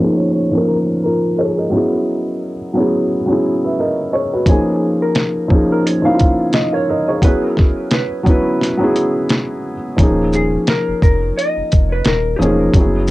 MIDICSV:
0, 0, Header, 1, 5, 480
1, 0, Start_track
1, 0, Tempo, 689655
1, 1186, Time_signature, 4, 2, 24, 8
1, 9123, End_track
2, 0, Start_track
2, 0, Title_t, "Hollow-body jazz guitar"
2, 0, Program_c, 0, 26
2, 0, Note_on_c, 0, 70, 82
2, 119, Note_off_c, 0, 70, 0
2, 122, Note_on_c, 0, 73, 84
2, 219, Note_off_c, 0, 73, 0
2, 230, Note_on_c, 0, 73, 93
2, 451, Note_off_c, 0, 73, 0
2, 473, Note_on_c, 0, 70, 84
2, 537, Note_off_c, 0, 70, 0
2, 723, Note_on_c, 0, 70, 78
2, 958, Note_on_c, 0, 68, 64
2, 961, Note_off_c, 0, 70, 0
2, 1404, Note_off_c, 0, 68, 0
2, 3124, Note_on_c, 0, 68, 81
2, 3493, Note_off_c, 0, 68, 0
2, 3496, Note_on_c, 0, 70, 93
2, 3941, Note_off_c, 0, 70, 0
2, 3982, Note_on_c, 0, 70, 77
2, 4079, Note_off_c, 0, 70, 0
2, 4079, Note_on_c, 0, 73, 94
2, 4208, Note_off_c, 0, 73, 0
2, 4213, Note_on_c, 0, 77, 108
2, 4551, Note_off_c, 0, 77, 0
2, 4554, Note_on_c, 0, 75, 97
2, 4689, Note_off_c, 0, 75, 0
2, 4692, Note_on_c, 0, 73, 85
2, 5039, Note_off_c, 0, 73, 0
2, 5042, Note_on_c, 0, 71, 86
2, 5178, Note_off_c, 0, 71, 0
2, 5178, Note_on_c, 0, 70, 83
2, 5522, Note_off_c, 0, 70, 0
2, 5525, Note_on_c, 0, 71, 82
2, 6688, Note_off_c, 0, 71, 0
2, 7206, Note_on_c, 0, 68, 84
2, 7443, Note_off_c, 0, 68, 0
2, 7445, Note_on_c, 0, 70, 97
2, 7659, Note_off_c, 0, 70, 0
2, 7678, Note_on_c, 0, 70, 77
2, 7917, Note_on_c, 0, 75, 100
2, 7919, Note_off_c, 0, 70, 0
2, 8298, Note_off_c, 0, 75, 0
2, 8298, Note_on_c, 0, 71, 86
2, 8387, Note_off_c, 0, 71, 0
2, 8404, Note_on_c, 0, 70, 98
2, 8598, Note_off_c, 0, 70, 0
2, 8604, Note_on_c, 0, 67, 64
2, 8623, Note_off_c, 0, 67, 0
2, 8625, Note_on_c, 0, 68, 73
2, 9123, Note_off_c, 0, 68, 0
2, 9123, End_track
3, 0, Start_track
3, 0, Title_t, "Felt piano"
3, 0, Program_c, 1, 0
3, 0, Control_c, 1, 64, 127
3, 0, Note_on_c, 1, 53, 77
3, 0, Note_on_c, 1, 58, 65
3, 0, Note_on_c, 1, 61, 58
3, 0, Note_on_c, 1, 63, 60
3, 0, Note_on_c, 1, 68, 77
3, 1, Note_off_c, 1, 61, 0
3, 1, Note_on_c, 1, 61, 62
3, 14, Note_off_c, 1, 63, 0
3, 14, Note_on_c, 1, 63, 73
3, 23, Note_off_c, 1, 68, 0
3, 23, Note_on_c, 1, 68, 86
3, 268, Note_off_c, 1, 53, 0
3, 274, Note_off_c, 1, 58, 0
3, 280, Note_off_c, 1, 61, 0
3, 286, Note_off_c, 1, 63, 0
3, 291, Note_off_c, 1, 68, 0
3, 357, Note_on_c, 1, 53, 84
3, 370, Note_on_c, 1, 58, 65
3, 382, Note_on_c, 1, 61, 60
3, 390, Note_on_c, 1, 63, 56
3, 400, Note_on_c, 1, 70, 86
3, 724, Note_off_c, 1, 70, 0
3, 734, Note_on_c, 1, 70, 62
3, 739, Note_on_c, 1, 65, 48
3, 949, Note_off_c, 1, 70, 0
3, 952, Note_off_c, 1, 65, 0
3, 964, Note_on_c, 1, 73, 65
3, 972, Note_on_c, 1, 68, 59
3, 1007, Note_off_c, 1, 53, 0
3, 1013, Note_off_c, 1, 58, 0
3, 1019, Note_off_c, 1, 61, 0
3, 1023, Note_off_c, 1, 63, 0
3, 1084, Note_off_c, 1, 73, 0
3, 1088, Note_off_c, 1, 68, 0
3, 1097, Note_on_c, 1, 75, 57
3, 1100, Note_on_c, 1, 70, 47
3, 1180, Note_on_c, 1, 54, 65
3, 1194, Note_on_c, 1, 59, 63
3, 1196, Control_c, 1, 64, 0
3, 1201, Note_on_c, 1, 61, 58
3, 1214, Note_on_c, 1, 64, 68
3, 1226, Note_on_c, 1, 68, 80
3, 1318, Note_off_c, 1, 75, 0
3, 1319, Note_off_c, 1, 70, 0
3, 1330, Control_c, 1, 64, 127
3, 1755, Note_off_c, 1, 54, 0
3, 1763, Note_off_c, 1, 59, 0
3, 1766, Note_off_c, 1, 61, 0
3, 1773, Note_off_c, 1, 64, 0
3, 1778, Note_off_c, 1, 68, 0
3, 1904, Note_on_c, 1, 54, 76
3, 1916, Note_on_c, 1, 59, 71
3, 1929, Note_on_c, 1, 61, 73
3, 1939, Note_on_c, 1, 64, 58
3, 1949, Note_on_c, 1, 68, 84
3, 2191, Note_off_c, 1, 54, 0
3, 2197, Note_off_c, 1, 59, 0
3, 2204, Note_off_c, 1, 61, 0
3, 2209, Note_off_c, 1, 64, 0
3, 2214, Note_off_c, 1, 68, 0
3, 2268, Note_on_c, 1, 54, 76
3, 2280, Note_on_c, 1, 59, 54
3, 2289, Note_on_c, 1, 61, 61
3, 2300, Note_on_c, 1, 64, 66
3, 2310, Note_on_c, 1, 68, 83
3, 2400, Note_off_c, 1, 68, 0
3, 2536, Note_on_c, 1, 76, 59
3, 2539, Note_on_c, 1, 71, 51
3, 2628, Note_off_c, 1, 76, 0
3, 2630, Note_off_c, 1, 71, 0
3, 2640, Note_on_c, 1, 75, 59
3, 2646, Note_on_c, 1, 70, 53
3, 2861, Note_off_c, 1, 75, 0
3, 2864, Note_off_c, 1, 70, 0
3, 2876, Note_on_c, 1, 73, 64
3, 2881, Note_on_c, 1, 68, 48
3, 2922, Note_off_c, 1, 54, 0
3, 2928, Note_off_c, 1, 59, 0
3, 2933, Note_off_c, 1, 61, 0
3, 2938, Note_off_c, 1, 64, 0
3, 3000, Note_off_c, 1, 73, 0
3, 3003, Note_off_c, 1, 68, 0
3, 3016, Note_on_c, 1, 71, 60
3, 3018, Note_on_c, 1, 66, 48
3, 3105, Note_on_c, 1, 53, 67
3, 3116, Control_c, 1, 64, 0
3, 3117, Note_on_c, 1, 58, 69
3, 3124, Note_on_c, 1, 61, 63
3, 3135, Note_on_c, 1, 63, 70
3, 3146, Note_on_c, 1, 68, 83
3, 3235, Control_c, 1, 64, 127
3, 3237, Note_off_c, 1, 71, 0
3, 3238, Note_off_c, 1, 66, 0
3, 3678, Note_off_c, 1, 53, 0
3, 3684, Note_off_c, 1, 58, 0
3, 3688, Note_off_c, 1, 61, 0
3, 3693, Note_off_c, 1, 63, 0
3, 3699, Note_off_c, 1, 68, 0
3, 3815, Note_on_c, 1, 53, 77
3, 3827, Note_on_c, 1, 58, 70
3, 3837, Note_on_c, 1, 61, 72
3, 3848, Note_on_c, 1, 63, 76
3, 3858, Note_on_c, 1, 68, 83
3, 4107, Note_off_c, 1, 53, 0
3, 4113, Note_off_c, 1, 58, 0
3, 4118, Note_off_c, 1, 61, 0
3, 4123, Note_off_c, 1, 63, 0
3, 4129, Note_off_c, 1, 68, 0
3, 4190, Note_on_c, 1, 53, 70
3, 4201, Note_on_c, 1, 58, 65
3, 4210, Note_on_c, 1, 61, 64
3, 4221, Note_on_c, 1, 63, 65
3, 4231, Note_on_c, 1, 64, 76
3, 4255, Note_off_c, 1, 64, 0
3, 4278, Note_on_c, 1, 65, 84
3, 4680, Note_on_c, 1, 77, 54
3, 4685, Note_on_c, 1, 70, 50
3, 4780, Note_off_c, 1, 77, 0
3, 4782, Note_off_c, 1, 70, 0
3, 4799, Note_on_c, 1, 75, 66
3, 4804, Note_on_c, 1, 70, 59
3, 4843, Note_off_c, 1, 53, 0
3, 4848, Note_off_c, 1, 58, 0
3, 4853, Note_off_c, 1, 61, 0
3, 4858, Note_off_c, 1, 63, 0
3, 4887, Note_off_c, 1, 65, 0
3, 4921, Note_off_c, 1, 75, 0
3, 4924, Note_off_c, 1, 70, 0
3, 4929, Note_on_c, 1, 73, 55
3, 4934, Note_on_c, 1, 68, 46
3, 5020, Note_on_c, 1, 54, 70
3, 5030, Note_on_c, 1, 59, 64
3, 5035, Control_c, 1, 64, 0
3, 5041, Note_on_c, 1, 61, 64
3, 5053, Note_off_c, 1, 68, 0
3, 5053, Note_on_c, 1, 64, 59
3, 5064, Note_on_c, 1, 68, 81
3, 5154, Note_off_c, 1, 73, 0
3, 5175, Control_c, 1, 64, 127
3, 5595, Note_off_c, 1, 54, 0
3, 5600, Note_off_c, 1, 59, 0
3, 5606, Note_off_c, 1, 61, 0
3, 5612, Note_off_c, 1, 64, 0
3, 5617, Note_off_c, 1, 68, 0
3, 5730, Note_on_c, 1, 54, 82
3, 5741, Note_on_c, 1, 59, 72
3, 5751, Note_on_c, 1, 61, 71
3, 5764, Note_on_c, 1, 64, 80
3, 5775, Note_on_c, 1, 71, 86
3, 6024, Note_off_c, 1, 54, 0
3, 6030, Note_off_c, 1, 59, 0
3, 6035, Note_off_c, 1, 61, 0
3, 6041, Note_off_c, 1, 64, 0
3, 6047, Note_off_c, 1, 71, 0
3, 6106, Note_on_c, 1, 54, 83
3, 6117, Note_on_c, 1, 59, 68
3, 6129, Note_on_c, 1, 61, 61
3, 6139, Note_on_c, 1, 64, 67
3, 6150, Note_on_c, 1, 68, 85
3, 6761, Note_off_c, 1, 54, 0
3, 6766, Note_off_c, 1, 59, 0
3, 6772, Note_off_c, 1, 61, 0
3, 6777, Note_off_c, 1, 64, 0
3, 6783, Note_off_c, 1, 68, 0
3, 6936, Note_on_c, 1, 53, 67
3, 6947, Note_on_c, 1, 58, 65
3, 6955, Control_c, 1, 64, 0
3, 6957, Note_on_c, 1, 61, 69
3, 6968, Note_on_c, 1, 63, 68
3, 6980, Note_on_c, 1, 68, 79
3, 7097, Control_c, 1, 64, 127
3, 7694, Note_off_c, 1, 53, 0
3, 7699, Note_off_c, 1, 58, 0
3, 7704, Note_off_c, 1, 61, 0
3, 7710, Note_off_c, 1, 63, 0
3, 7716, Note_off_c, 1, 68, 0
3, 8621, Note_on_c, 1, 53, 69
3, 8630, Note_on_c, 1, 58, 71
3, 8642, Note_on_c, 1, 61, 66
3, 8653, Note_on_c, 1, 63, 61
3, 8666, Note_on_c, 1, 68, 74
3, 8817, Note_off_c, 1, 53, 0
3, 8822, Note_off_c, 1, 58, 0
3, 8828, Note_off_c, 1, 61, 0
3, 8834, Note_off_c, 1, 63, 0
3, 8840, Note_off_c, 1, 68, 0
3, 8862, Note_on_c, 1, 54, 64
3, 8871, Note_on_c, 1, 58, 45
3, 8875, Control_c, 1, 64, 0
3, 8882, Note_on_c, 1, 61, 63
3, 8895, Note_on_c, 1, 64, 59
3, 8905, Note_on_c, 1, 68, 71
3, 8918, Note_on_c, 1, 59, 50
3, 8920, Note_off_c, 1, 58, 0
3, 8997, Control_c, 1, 64, 127
3, 9123, Note_off_c, 1, 54, 0
3, 9123, Note_off_c, 1, 59, 0
3, 9123, Note_off_c, 1, 61, 0
3, 9123, Note_off_c, 1, 64, 0
3, 9123, Note_off_c, 1, 68, 0
3, 9123, End_track
4, 0, Start_track
4, 0, Title_t, "Sub bass"
4, 0, Program_c, 2, 38
4, 6950, Note_on_c, 2, 27, 96
4, 7357, Note_off_c, 2, 27, 0
4, 7571, Note_on_c, 2, 29, 46
4, 7610, Note_off_c, 2, 29, 0
4, 7675, Note_on_c, 2, 29, 89
4, 7876, Note_off_c, 2, 29, 0
4, 8050, Note_on_c, 2, 29, 42
4, 8090, Note_off_c, 2, 29, 0
4, 8164, Note_on_c, 2, 29, 73
4, 8361, Note_off_c, 2, 29, 0
4, 8390, Note_on_c, 2, 27, 92
4, 8593, Note_off_c, 2, 27, 0
4, 8626, Note_on_c, 2, 28, 86
4, 8831, Note_off_c, 2, 28, 0
4, 8866, Note_on_c, 2, 30, 103
4, 9123, Note_off_c, 2, 30, 0
4, 9123, End_track
5, 0, Start_track
5, 0, Title_t, "Drums"
5, 3105, Note_on_c, 9, 36, 102
5, 3108, Note_on_c, 9, 42, 64
5, 3174, Note_off_c, 9, 36, 0
5, 3178, Note_off_c, 9, 42, 0
5, 3585, Note_on_c, 9, 42, 50
5, 3590, Note_on_c, 9, 38, 102
5, 3655, Note_off_c, 9, 42, 0
5, 3660, Note_off_c, 9, 38, 0
5, 3831, Note_on_c, 9, 36, 85
5, 3900, Note_off_c, 9, 36, 0
5, 4084, Note_on_c, 9, 42, 60
5, 4154, Note_off_c, 9, 42, 0
5, 4311, Note_on_c, 9, 42, 45
5, 4321, Note_on_c, 9, 36, 76
5, 4381, Note_off_c, 9, 42, 0
5, 4390, Note_off_c, 9, 36, 0
5, 4543, Note_on_c, 9, 42, 58
5, 4550, Note_on_c, 9, 38, 97
5, 4613, Note_off_c, 9, 42, 0
5, 4620, Note_off_c, 9, 38, 0
5, 5024, Note_on_c, 9, 36, 97
5, 5029, Note_on_c, 9, 42, 72
5, 5094, Note_off_c, 9, 36, 0
5, 5098, Note_off_c, 9, 42, 0
5, 5269, Note_on_c, 9, 38, 31
5, 5282, Note_on_c, 9, 36, 87
5, 5338, Note_off_c, 9, 38, 0
5, 5351, Note_off_c, 9, 36, 0
5, 5503, Note_on_c, 9, 42, 47
5, 5509, Note_on_c, 9, 38, 103
5, 5573, Note_off_c, 9, 42, 0
5, 5578, Note_off_c, 9, 38, 0
5, 5751, Note_on_c, 9, 36, 86
5, 5755, Note_on_c, 9, 42, 43
5, 5821, Note_off_c, 9, 36, 0
5, 5825, Note_off_c, 9, 42, 0
5, 5995, Note_on_c, 9, 38, 29
5, 6009, Note_on_c, 9, 42, 52
5, 6065, Note_off_c, 9, 38, 0
5, 6078, Note_off_c, 9, 42, 0
5, 6234, Note_on_c, 9, 42, 41
5, 6304, Note_off_c, 9, 42, 0
5, 6468, Note_on_c, 9, 42, 57
5, 6475, Note_on_c, 9, 38, 100
5, 6538, Note_off_c, 9, 42, 0
5, 6545, Note_off_c, 9, 38, 0
5, 6948, Note_on_c, 9, 36, 114
5, 6953, Note_on_c, 9, 42, 66
5, 7017, Note_off_c, 9, 36, 0
5, 7022, Note_off_c, 9, 42, 0
5, 7189, Note_on_c, 9, 82, 53
5, 7258, Note_off_c, 9, 82, 0
5, 7427, Note_on_c, 9, 42, 47
5, 7433, Note_on_c, 9, 38, 106
5, 7497, Note_off_c, 9, 42, 0
5, 7502, Note_off_c, 9, 38, 0
5, 7673, Note_on_c, 9, 36, 97
5, 7676, Note_on_c, 9, 82, 42
5, 7742, Note_off_c, 9, 36, 0
5, 7746, Note_off_c, 9, 82, 0
5, 7926, Note_on_c, 9, 42, 58
5, 7995, Note_off_c, 9, 42, 0
5, 8156, Note_on_c, 9, 42, 44
5, 8156, Note_on_c, 9, 82, 44
5, 8163, Note_on_c, 9, 36, 76
5, 8225, Note_off_c, 9, 42, 0
5, 8225, Note_off_c, 9, 82, 0
5, 8233, Note_off_c, 9, 36, 0
5, 8383, Note_on_c, 9, 42, 60
5, 8390, Note_on_c, 9, 38, 100
5, 8453, Note_off_c, 9, 42, 0
5, 8460, Note_off_c, 9, 38, 0
5, 8642, Note_on_c, 9, 82, 40
5, 8712, Note_off_c, 9, 82, 0
5, 8864, Note_on_c, 9, 36, 120
5, 8867, Note_on_c, 9, 42, 72
5, 8934, Note_off_c, 9, 36, 0
5, 8937, Note_off_c, 9, 42, 0
5, 9100, Note_on_c, 9, 82, 52
5, 9123, Note_off_c, 9, 82, 0
5, 9123, End_track
0, 0, End_of_file